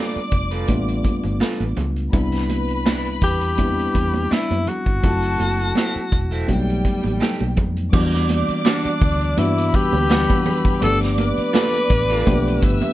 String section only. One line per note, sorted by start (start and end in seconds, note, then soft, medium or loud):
0.00 1.73 D5 medium
0.00 1.73 D6 loud
2.13 4.63 B4 medium
2.13 4.63 B5 loud
5.04 6.10 A4 medium
5.04 6.10 A5 medium
6.48 7.55 G3 medium
6.48 7.55 G5 loud
7.93 9.70 D5 medium
7.93 9.70 D6 loud
9.74 10.80 B4 medium
9.74 10.80 B5 loud
10.82 12.59 D5 medium
10.82 12.59 D6 loud
12.62 12.93 E5 medium
12.62 12.93 E6 loud